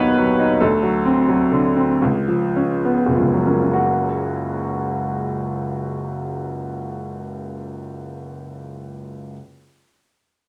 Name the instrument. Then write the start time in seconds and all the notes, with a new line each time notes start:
grand piano
Already playing: D#2 F#3 B3 D#4 B4 C#5
0.18 F#3
0.39 D#4
0.60 D2 A4
0.82 F#3
1.05 C4
1.28 F#3
1.52 D3
1.76 C4
2.02 C#2
2.28 F3
2.56 C#4
2.85 B3
3.06 F#1
3.15 F3
3.20 C#2
3.34 F#3
3.46 A#3 C#4
3.61 C#4
3.73 F#4